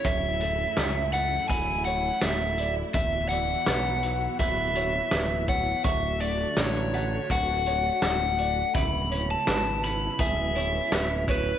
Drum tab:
HH |xxxxxxxx|xxxxxxxx|xxxxxxxx|xxxxxxxx|
SD |--o---o-|--o---o-|--o---o-|--o---o-|
BD |o---o---|o---o--o|o---o---|o---o--o|